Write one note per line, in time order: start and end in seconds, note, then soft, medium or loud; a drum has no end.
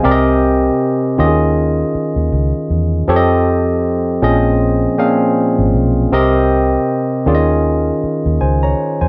0.00 1.17 C3 loud
0.00 1.18 C4 medium
0.00 0.25 C5 medium
0.00 0.25 G#5 medium
0.04 0.69 C2 loud
0.04 1.18 G4 loud
0.04 1.18 A#4 loud
0.04 0.12 D5 medium
0.11 1.19 D#5 loud
1.18 1.83 D#2 medium
1.18 2.54 D#3 medium
1.18 2.54 C#4 medium
1.18 2.54 F4 medium
1.18 1.26 G4 medium
1.18 2.55 D#5 medium
1.26 2.58 G#4 medium
1.95 muted fingered electric bass stroke soft
2.16 2.29 D#2 medium
2.32 2.51 C#2 medium
2.70 3.02 E2 medium
3.08 4.18 F2 loud
3.08 4.21 F3 loud
3.08 4.21 C4 loud
3.08 4.22 G4 loud
3.08 4.23 A4 medium
3.08 3.17 C#5 medium
3.16 4.23 D#5 loud
4.22 4.86 A#1 medium
4.22 4.90 A#2 medium
4.22 4.90 F3 medium
4.22 4.90 C4 medium
4.22 4.90 C#4 medium
4.22 4.90 G#4 medium
4.22 4.91 D#5 loud
4.98 6.00 A#2 medium
4.98 6.00 F3 medium
4.98 6.00 C4 medium
4.98 6.00 C#4 medium
4.98 6.00 G#4 medium
4.98 6.01 F5 medium
5.58 5.71 G#1 medium
5.74 6.06 B1 medium
6.12 6.76 C2 loud
6.12 7.26 C3 loud
6.12 7.26 C4 loud
6.12 7.27 G4 loud
6.12 7.26 A#4 loud
6.12 7.27 D#5 loud
7.26 7.90 D#2 medium
7.26 8.61 D#3 medium
7.26 8.62 C#4 medium
7.26 8.62 F4 medium
7.26 8.62 G#4 medium
7.26 7.35 D5 medium
7.35 8.44 D#5 medium
8.04 muted fingered electric bass stroke soft
8.26 8.38 D#2 medium
8.41 8.73 C#2 medium
8.41 8.62 C5 medium
8.41 8.62 G#5 medium
8.63 8.99 C#5 medium
8.63 8.99 A#5 medium
9.01 9.08 E2 medium
9.01 9.08 C5 medium
9.01 9.08 G#5 medium